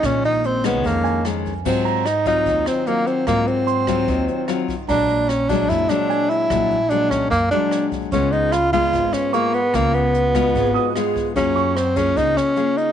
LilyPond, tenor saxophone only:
\new Staff \with { instrumentName = "Tenor saxophone" } { \time 4/4 \key aes \mixolydian \tempo 4 = 148 des'8 ees'8 c'8 ces'8 bes4 r4 | c'4 ees'8 ees'4 c'8 bes8 c'8 | bes8 c'2. r8 | d'4 des'8 d'8 e'8 d'4 e'8~ |
e'4 d'8 des'8 bes8 d'4 r8 | des'8 ees'8 f'8 f'4 des'8 bes8 ces'8 | bes8 ces'2. r8 | des'4 c'8 des'8 ees'8 des'4 ees'8 | }